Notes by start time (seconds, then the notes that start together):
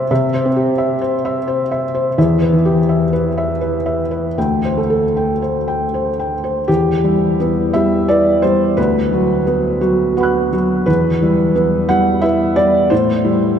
Already playing: C3 C4 G4 C5 E5
0.11 C3 E5
0.34 C5
0.45 C4
0.56 G4
0.78 E5
1.01 C5
1.25 E5
1.48 C5
1.71 E5
1.95 C5
2.18 E2 E5
2.42 B4
2.53 E3
2.65 G4
2.89 E5
3.13 B4
3.38 E5
3.61 B4
3.86 E5
4.11 B4
4.38 D2 G5
4.64 C5
4.77 A3
4.90 A4
5.17 G5
5.42 C5
5.68 G5
5.94 C5
6.19 G5
6.44 C5
6.68 E2 G4
7.04 G3 E4
7.40 B3 E4
7.73 G3 E4 E5
8.08 B3 E4 D5
8.42 G3 E4 C5
8.77 D2 B4
9.12 F#3 F#4
9.47 B3 F#4
9.81 F#3 F#4
10.17 B3 F#4 F#5 B5
10.23 F#6
10.52 F#3 F#4
10.86 E2 B4
11.22 G3 E4
11.55 B3 E4
11.89 G3 E4 F#5
12.21 B3 E4 E5
12.56 G3 E4 D5
12.90 A2 C5
13.24 G3 E4